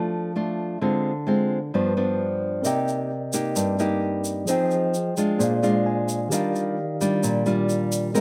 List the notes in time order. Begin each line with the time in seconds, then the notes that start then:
Already playing: F3 A3 D4 F4
0.36 A3 D4 F4
0.81 D3 G#3 C4 F4
1.27 G#3 C4 F4
1.74 G2 F3 B3 D4
1.97 F3 B3 D4
2.62 C3 A#3 C4 D#4 A#4 D5, shaker
2.66 G4 D#5 G5
2.88 shaker
3.33 A#3 D#4 G4, shaker
3.56 G2, shaker
3.79 A#3 D#4 G4, shaker
4.24 shaker
4.45 F3 C4 D#4 G#4 C5, shaker
4.49 G#4 D#5 G5
4.71 shaker
4.94 shaker
5.17 G#3 D4 F4, shaker
5.37 A#2 A#3 G#4 C5, shaker
5.42 D5 F5
5.63 G#3 D4 F4 F5, shaker
5.86 G#5
6.09 shaker
6.28 D#3 G3 D4 G4 A#4, shaker
6.33 F4 D5 F5
6.56 shaker
7.01 G3 D4 F4, shaker
7.23 A#2, shaker
7.46 G3 D4 F4, shaker
7.69 shaker
7.92 shaker
8.12 G#3 C4 F#4 A#4 C5, shaker
8.18 D#5